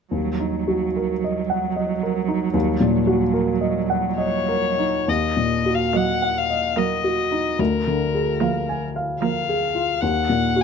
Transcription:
0.11 2.50 D#2 soft
0.11 4.83 F#3 soft
0.40 0.85 D#4 soft
0.68 1.13 F#4 soft
0.97 1.40 A#4 soft
1.24 1.67 D#5 soft
1.50 1.92 F#5 soft
1.76 2.18 D#5 soft
2.03 2.44 A#4 soft
2.28 2.70 D#4 soft
2.54 5.03 D#2 soft
2.80 3.23 A#2 soft
3.07 3.50 F#4 soft
3.34 3.78 A#4 soft
3.61 4.06 D#5 soft
3.90 4.36 F#5 soft
4.18 5.10 C#5 medium
4.18 4.66 D#5 soft
4.49 4.97 A#4 soft
4.79 5.08 D#4 soft
5.08 7.55 D#2 soft
5.08 5.76 D#5 soft
5.37 5.82 A#2 soft
5.66 6.11 F#4 soft
5.75 5.98 F5 soft
5.93 6.57 F#3 soft
5.93 6.56 A#3 soft
5.93 6.38 D#5 soft
5.93 6.39 F#5 soft
6.22 6.66 F#5 soft
6.38 6.80 F5 soft
6.50 6.94 D#5 soft
6.76 7.39 F#3 soft
6.76 7.38 A#3 soft
6.76 7.21 A#4 soft
6.76 7.61 D#5 soft
7.04 7.48 F#4 soft
7.32 7.59 D#4 soft
7.59 9.98 D2 soft
7.59 8.82 A#4 soft
7.87 8.31 D3 soft
8.15 8.58 G#4 soft
8.40 9.02 F3 soft
8.40 9.02 A#3 soft
8.40 8.85 F5 soft
8.69 9.12 G#5 soft
8.96 9.38 F5 soft
9.20 9.81 F3 soft
9.20 9.82 A#3 soft
9.20 9.65 A#4 soft
9.20 10.03 F5 soft
9.49 9.91 G#4 soft
9.75 10.02 F4 soft
10.01 10.63 D#2 soft
10.01 10.63 F#5 soft
10.29 10.63 A#2 soft
10.56 10.63 F#4 soft

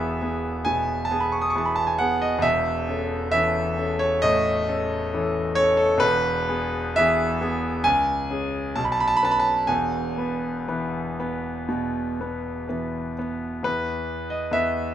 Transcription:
0.00 2.42 E1 medium
0.00 2.39 E2 medium
0.00 0.17 E3 soft
0.00 0.22 B3 soft
0.00 0.22 G#4 medium
0.00 2.47 B4 medium
0.00 0.65 E5 medium
0.22 0.62 B3 soft
0.22 0.62 G#4 soft
0.65 1.09 B2 medium
0.65 1.05 G#5 medium
1.05 1.21 A5 medium
1.11 1.52 B3 soft
1.11 1.52 G#4 medium
1.20 1.33 B5 medium
1.32 1.43 C#6 medium
1.42 1.51 D#6 medium
1.50 1.59 C#6 medium
1.55 1.96 E3 soft
1.55 1.96 B3 soft
1.55 1.97 G#4 medium
1.55 1.67 A5 medium
1.66 1.77 B5 medium
1.76 1.88 A5 medium
1.87 1.99 G#5 medium
1.99 2.40 B3 soft
1.99 2.41 G#4 soft
1.99 2.22 F#5 medium
2.22 2.44 D#5 medium
2.39 2.86 E1 medium
2.39 2.84 E2 medium
2.39 3.30 E5 loud
2.88 3.29 C#4 soft
2.88 3.29 A4 soft
3.31 3.74 E3 soft
3.31 3.74 C#4 medium
3.31 3.74 A4 medium
3.31 4.00 E5 loud
3.78 4.19 C#4 soft
3.78 4.19 A4 medium
3.99 4.22 C#5 medium
4.22 4.67 A2 medium
4.22 5.56 D#5 loud
4.68 5.09 C#4 soft
4.68 5.09 A4 medium
5.14 5.53 E3 soft
5.14 5.53 C#4 soft
5.14 5.53 A4 medium
5.55 5.97 C#4 medium
5.55 5.76 A4 medium
5.55 5.78 C#5 loud
5.77 6.00 A4 medium
5.98 6.46 E1 medium
5.98 6.45 E2 medium
5.98 6.95 B4 loud
6.49 6.92 B3 soft
6.49 6.92 G#4 soft
6.96 7.38 E3 medium
6.96 7.38 B3 medium
6.96 7.38 G#4 medium
6.96 7.85 E5 loud
7.41 7.81 B3 soft
7.41 7.81 G#4 medium
7.84 8.28 C#2 medium
7.84 8.75 G#5 loud
8.30 8.72 C#4 soft
8.30 8.72 G#4 medium
8.76 9.21 B1 medium
8.76 8.83 A5 medium
8.85 8.92 B5 medium
8.92 9.00 A5 medium
9.00 9.08 B5 medium
9.08 9.16 A5 medium
9.17 9.25 B5 medium
9.22 9.66 C#4 soft
9.22 9.66 B4 soft
9.22 9.33 A5 medium
9.31 9.41 B5 medium
9.40 9.69 A5 medium
9.67 10.16 E1 medium
9.67 10.17 E2 medium
9.67 13.16 G#5 medium
10.18 10.64 B3 soft
10.18 10.65 B4 soft
10.68 11.16 E3 soft
10.68 11.15 B3 soft
10.68 11.16 B4 soft
11.20 11.67 B3 soft
11.20 11.66 B4 soft
11.69 12.18 B2 soft
12.21 12.65 B3 soft
12.21 12.65 B4 soft
12.69 13.13 E3 soft
12.69 13.14 B3 soft
12.69 13.14 B4 soft
13.18 13.61 B3 soft
13.18 13.62 B4 soft
13.63 14.50 E2 soft
13.63 14.50 E3 soft
13.63 14.51 B3 soft
13.63 14.31 B4 medium
14.30 14.53 D#5 medium
14.51 14.94 E2 soft
14.51 14.94 E3 soft
14.51 14.94 B3 soft
14.51 14.94 B4 soft
14.51 14.94 E5 medium

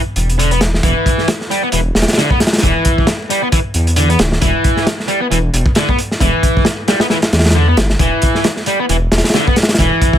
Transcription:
0.16 0.80 E1 medium
0.16 closed hi-hat medium
0.29 closed hi-hat soft
0.39 0.50 D3 medium
0.39 closed hi-hat medium
0.51 0.60 B3 medium
0.51 closed hi-hat soft
0.61 snare loud
0.61 closed hi-hat medium
0.74 snare medium
0.83 0.94 E1 loud
0.83 1.27 E3 loud
0.83 kick loud
0.83 closed hi-hat medium
1.06 kick medium
1.06 closed hi-hat medium
1.18 snare soft
1.28 snare loud
1.28 closed hi-hat medium
1.41 snare soft
1.51 1.61 G3 medium
1.51 closed hi-hat medium
1.63 1.68 B3 loud
1.72 1.92 E1 medium
1.72 1.79 E3 medium
1.72 closed hi-hat medium
1.95 2.06 E1 loud
1.95 snare medium
1.95 closed hi-hat medium
2.02 snare medium
2.02 closed hi-hat medium
2.08 snare medium
2.08 closed hi-hat medium
2.13 snare medium
2.13 closed hi-hat medium
2.18 2.29 D3 medium
2.18 snare loud
2.18 closed hi-hat medium
2.30 2.39 B3 medium
2.30 kick loud
2.40 snare medium
2.40 closed hi-hat medium
2.47 snare medium
2.47 closed hi-hat medium
2.53 snare loud
2.53 closed hi-hat medium
2.58 snare medium
2.58 closed hi-hat medium
2.63 2.73 E1 loud
2.63 3.07 E3 loud
2.63 kick loud
2.63 closed hi-hat medium
2.85 kick medium
2.85 closed hi-hat medium
2.98 kick medium
3.07 snare loud
3.07 closed hi-hat medium
3.30 3.40 G3 medium
3.30 closed hi-hat medium
3.42 3.47 B3 loud
3.52 3.59 E3 medium
3.52 kick loud
3.52 closed hi-hat medium
3.74 4.16 E2 loud
3.74 closed hi-hat medium
3.87 closed hi-hat soft
3.96 4.08 D3 medium
3.96 closed hi-hat medium
4.10 4.18 B3 medium
4.10 closed hi-hat soft
4.19 4.38 D1 medium
4.19 snare loud
4.19 closed hi-hat medium
4.32 snare medium
4.42 4.52 E1 loud
4.42 4.86 E3 loud
4.42 kick loud
4.42 closed hi-hat medium
4.64 kick loud
4.64 closed hi-hat medium
4.77 snare soft
4.87 snare loud
4.87 closed hi-hat medium
5.00 snare soft
5.08 5.20 G3 medium
5.08 closed hi-hat medium
5.22 5.26 B3 loud
5.31 5.50 E1 medium
5.31 5.38 E3 medium
5.31 closed hi-hat medium
5.53 5.64 E1 loud
5.53 closed hi-hat medium
5.66 kick loud
5.75 5.88 D3 medium
5.75 snare loud
5.75 closed hi-hat loud
5.89 5.97 B3 medium
5.89 kick medium
5.99 closed hi-hat medium
6.11 snare soft
6.20 6.31 E1 loud
6.20 6.65 E3 loud
6.20 kick loud
6.20 closed hi-hat medium
6.43 kick medium
6.43 closed hi-hat medium
6.57 kick medium
6.65 snare loud
6.65 closed hi-hat medium
6.88 6.99 G3 medium
6.88 snare loud
6.88 closed hi-hat medium
7.00 7.06 B3 medium
7.00 snare loud
7.00 closed hi-hat medium
7.10 7.17 E3 medium
7.10 snare loud
7.10 closed hi-hat medium
7.22 snare loud
7.22 closed hi-hat medium
7.33 7.74 E2 loud
7.33 snare medium
7.33 closed hi-hat medium
7.39 snare medium
7.39 closed hi-hat medium
7.44 snare loud
7.44 closed hi-hat medium
7.50 snare medium
7.50 closed hi-hat medium
7.55 7.67 D3 medium
7.68 7.76 B3 medium
7.77 7.96 G1 loud
7.77 snare loud
7.77 closed hi-hat medium
7.90 snare medium
7.99 8.10 E1 loud
7.99 8.44 E3 loud
7.99 kick loud
7.99 closed hi-hat medium
8.22 kick loud
8.22 closed hi-hat medium
8.35 snare soft
8.44 snare loud
8.44 closed hi-hat medium
8.56 snare soft
8.66 8.78 G3 medium
8.66 closed hi-hat medium
8.80 8.85 B3 loud
8.89 9.08 E1 medium
8.89 8.96 E3 medium
8.89 closed hi-hat medium
9.12 9.22 E1 loud
9.12 snare medium
9.12 closed hi-hat medium
9.18 snare medium
9.18 closed hi-hat medium
9.24 snare loud
9.24 closed hi-hat medium
9.29 snare medium
9.29 closed hi-hat medium
9.34 9.46 D3 medium
9.34 snare loud
9.34 closed hi-hat medium
9.47 9.55 B3 medium
9.47 kick medium
9.56 snare medium
9.56 closed hi-hat medium
9.62 snare medium
9.62 closed hi-hat medium
9.69 snare medium
9.69 closed hi-hat medium
9.74 snare medium
9.74 closed hi-hat medium
9.79 9.89 E1 loud
9.79 10.18 E3 loud
9.79 kick loud
9.79 closed hi-hat medium
10.02 kick medium
10.02 closed hi-hat medium
10.13 kick medium

